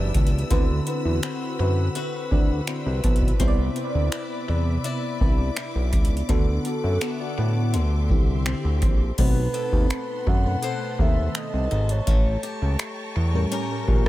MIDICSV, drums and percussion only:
0, 0, Header, 1, 2, 480
1, 0, Start_track
1, 0, Tempo, 722892
1, 336, Time_signature, 4, 2, 24, 8
1, 9354, End_track
2, 0, Start_track
2, 0, Title_t, "Drums"
2, 96, Note_on_c, 9, 36, 97
2, 96, Note_on_c, 9, 42, 71
2, 162, Note_off_c, 9, 36, 0
2, 162, Note_off_c, 9, 42, 0
2, 177, Note_on_c, 9, 42, 57
2, 243, Note_off_c, 9, 42, 0
2, 256, Note_on_c, 9, 42, 41
2, 322, Note_off_c, 9, 42, 0
2, 336, Note_on_c, 9, 36, 103
2, 336, Note_on_c, 9, 42, 63
2, 402, Note_off_c, 9, 36, 0
2, 402, Note_off_c, 9, 42, 0
2, 576, Note_on_c, 9, 42, 63
2, 642, Note_off_c, 9, 42, 0
2, 816, Note_on_c, 9, 42, 67
2, 818, Note_on_c, 9, 26, 107
2, 882, Note_off_c, 9, 42, 0
2, 884, Note_off_c, 9, 26, 0
2, 1297, Note_on_c, 9, 42, 81
2, 1363, Note_off_c, 9, 42, 0
2, 1536, Note_on_c, 9, 36, 97
2, 1602, Note_off_c, 9, 36, 0
2, 1775, Note_on_c, 9, 42, 64
2, 1776, Note_on_c, 9, 26, 109
2, 1841, Note_off_c, 9, 42, 0
2, 1843, Note_off_c, 9, 26, 0
2, 2016, Note_on_c, 9, 36, 91
2, 2017, Note_on_c, 9, 42, 71
2, 2083, Note_off_c, 9, 36, 0
2, 2083, Note_off_c, 9, 42, 0
2, 2097, Note_on_c, 9, 42, 58
2, 2136, Note_on_c, 9, 36, 82
2, 2163, Note_off_c, 9, 42, 0
2, 2177, Note_on_c, 9, 42, 40
2, 2203, Note_off_c, 9, 36, 0
2, 2244, Note_off_c, 9, 42, 0
2, 2256, Note_on_c, 9, 36, 99
2, 2257, Note_on_c, 9, 42, 63
2, 2323, Note_off_c, 9, 36, 0
2, 2323, Note_off_c, 9, 42, 0
2, 2496, Note_on_c, 9, 42, 63
2, 2562, Note_off_c, 9, 42, 0
2, 2735, Note_on_c, 9, 42, 70
2, 2737, Note_on_c, 9, 26, 106
2, 2801, Note_off_c, 9, 42, 0
2, 2804, Note_off_c, 9, 26, 0
2, 3216, Note_on_c, 9, 42, 78
2, 3282, Note_off_c, 9, 42, 0
2, 3456, Note_on_c, 9, 36, 91
2, 3523, Note_off_c, 9, 36, 0
2, 3694, Note_on_c, 9, 42, 64
2, 3696, Note_on_c, 9, 26, 108
2, 3761, Note_off_c, 9, 42, 0
2, 3762, Note_off_c, 9, 26, 0
2, 3935, Note_on_c, 9, 42, 67
2, 3936, Note_on_c, 9, 36, 94
2, 4002, Note_off_c, 9, 36, 0
2, 4002, Note_off_c, 9, 42, 0
2, 4016, Note_on_c, 9, 42, 54
2, 4082, Note_off_c, 9, 42, 0
2, 4096, Note_on_c, 9, 42, 42
2, 4162, Note_off_c, 9, 42, 0
2, 4175, Note_on_c, 9, 42, 60
2, 4176, Note_on_c, 9, 36, 101
2, 4242, Note_off_c, 9, 36, 0
2, 4242, Note_off_c, 9, 42, 0
2, 4415, Note_on_c, 9, 42, 65
2, 4481, Note_off_c, 9, 42, 0
2, 4656, Note_on_c, 9, 42, 67
2, 4658, Note_on_c, 9, 26, 106
2, 4722, Note_off_c, 9, 42, 0
2, 4724, Note_off_c, 9, 26, 0
2, 5137, Note_on_c, 9, 42, 75
2, 5204, Note_off_c, 9, 42, 0
2, 5376, Note_on_c, 9, 36, 93
2, 5443, Note_off_c, 9, 36, 0
2, 5615, Note_on_c, 9, 42, 61
2, 5617, Note_on_c, 9, 26, 118
2, 5682, Note_off_c, 9, 42, 0
2, 5683, Note_off_c, 9, 26, 0
2, 5856, Note_on_c, 9, 36, 95
2, 5856, Note_on_c, 9, 42, 66
2, 5922, Note_off_c, 9, 36, 0
2, 5922, Note_off_c, 9, 42, 0
2, 6095, Note_on_c, 9, 42, 62
2, 6095, Note_on_c, 9, 49, 91
2, 6096, Note_on_c, 9, 36, 104
2, 6162, Note_off_c, 9, 36, 0
2, 6162, Note_off_c, 9, 42, 0
2, 6162, Note_off_c, 9, 49, 0
2, 6335, Note_on_c, 9, 42, 67
2, 6401, Note_off_c, 9, 42, 0
2, 6456, Note_on_c, 9, 36, 83
2, 6522, Note_off_c, 9, 36, 0
2, 6576, Note_on_c, 9, 42, 69
2, 6578, Note_on_c, 9, 26, 114
2, 6642, Note_off_c, 9, 42, 0
2, 6644, Note_off_c, 9, 26, 0
2, 6816, Note_on_c, 9, 36, 85
2, 6882, Note_off_c, 9, 36, 0
2, 7055, Note_on_c, 9, 42, 80
2, 7122, Note_off_c, 9, 42, 0
2, 7296, Note_on_c, 9, 36, 88
2, 7362, Note_off_c, 9, 36, 0
2, 7535, Note_on_c, 9, 42, 70
2, 7536, Note_on_c, 9, 26, 116
2, 7601, Note_off_c, 9, 42, 0
2, 7603, Note_off_c, 9, 26, 0
2, 7776, Note_on_c, 9, 42, 40
2, 7842, Note_off_c, 9, 42, 0
2, 7896, Note_on_c, 9, 42, 71
2, 7962, Note_off_c, 9, 42, 0
2, 8015, Note_on_c, 9, 36, 98
2, 8015, Note_on_c, 9, 42, 67
2, 8081, Note_off_c, 9, 42, 0
2, 8082, Note_off_c, 9, 36, 0
2, 8255, Note_on_c, 9, 42, 69
2, 8322, Note_off_c, 9, 42, 0
2, 8494, Note_on_c, 9, 42, 70
2, 8496, Note_on_c, 9, 26, 107
2, 8560, Note_off_c, 9, 42, 0
2, 8562, Note_off_c, 9, 26, 0
2, 8975, Note_on_c, 9, 42, 78
2, 9042, Note_off_c, 9, 42, 0
2, 9215, Note_on_c, 9, 36, 97
2, 9282, Note_off_c, 9, 36, 0
2, 9354, End_track
0, 0, End_of_file